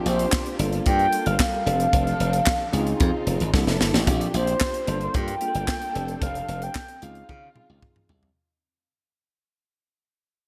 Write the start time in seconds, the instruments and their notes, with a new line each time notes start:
Already playing: string section A#3 D4 G4, tine electric piano C4 D4 F4 G4
0.06 slap bass A#1, soft synth lead C5, closed hi-hat
0.19 closed hi-hat
0.32 kick, snare, clap
0.46 closed hi-hat
0.59 slap bass G1, string section G3 A#3 F4 A4, tine electric piano A#3 D4 F4 A4, closed hi-hat
0.72 closed hi-hat
0.86 slap bass G2, soft synth lead G5, kick, closed hi-hat
0.99 closed hi-hat
1.13 closed hi-hat
1.26 slap bass G1, soft synth lead F5, closed hi-hat
1.39 soft synth lead F5, kick, snare, clap
1.66 slap bass F1, string section F3 C4 D4 A4, tine electric piano C4 D4 G4 A4, closed hi-hat
1.80 closed hi-hat
1.93 slap bass F1, kick, closed hi-hat
2.07 closed hi-hat
2.20 slap bass F1, closed hi-hat
2.33 closed hi-hat
2.46 kick, snare, clap
2.73 slap bass C#2, string section C#3 C4 D#4 F4, tine electric piano C4 D#4 E4 G#4, closed hi-hat
2.80 tine electric piano F4
2.87 closed hi-hat
3.00 slap bass F2, kick, closed hi-hat
3.27 slap bass F1, closed hi-hat
3.40 slap bass G#1, closed hi-hat
3.53 slap bass C2, string section C3 A#3 D4 E4 A4, tine electric piano A#3 D4 E4 A4, kick, snare
3.67 slap bass F1, snare
3.80 slap bass G1, tine electric piano A#3 D4 E4 A4, snare
3.94 slap bass A1, snare
4.07 slap bass A#1, string section A#3 D4 G4, tine electric piano C4 D4 F4 G4, kick, closed hi-hat
4.21 closed hi-hat
4.34 slap bass A#1, soft synth lead C5, closed hi-hat
4.47 closed hi-hat
4.60 kick, snare, clap
4.74 closed hi-hat
4.87 slap bass G1, string section G3 A#3 F4 A4, tine electric piano A#3 D4 F4 A4, closed hi-hat
5.01 closed hi-hat
5.14 slap bass G2, soft synth lead G5, kick, closed hi-hat
5.28 closed hi-hat
5.41 tine electric piano A#3 D4 F4 G#4, closed hi-hat
5.48 tine electric piano A4
5.55 slap bass G1, closed hi-hat
5.68 kick, snare, clap
5.82 closed hi-hat
5.94 slap bass F1, string section F3 C4 D4, tine electric piano C4 D4 G4 A4, closed hi-hat
6.08 closed hi-hat
6.22 slap bass F1, soft synth lead F5, kick, closed hi-hat
6.35 closed hi-hat
6.48 slap bass F1, closed hi-hat
6.62 soft synth lead G5, closed hi-hat
6.75 kick, snare, clap
6.88 closed hi-hat
7.02 slap bass C#2, string section C#3 D#4 F4, tine electric piano C4 D#4 F4 G#4, soft synth lead F5, closed hi-hat
7.15 closed hi-hat
7.29 slap bass C#3, kick, high tom
7.55 tine electric piano C4 D#4 F4 G#4, mid tom
7.70 slap bass C#2
7.82 kick, mid tom
7.96 mid tom
8.09 slap bass C2, floor tom
8.23 floor tom